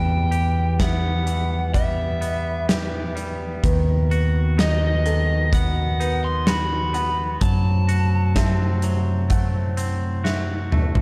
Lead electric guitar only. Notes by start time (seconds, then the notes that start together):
Already playing: G5
0.81 F#5
1.74 E5
4.60 D#5
5.54 F#5
6.24 C6
6.48 B5
7.42 A5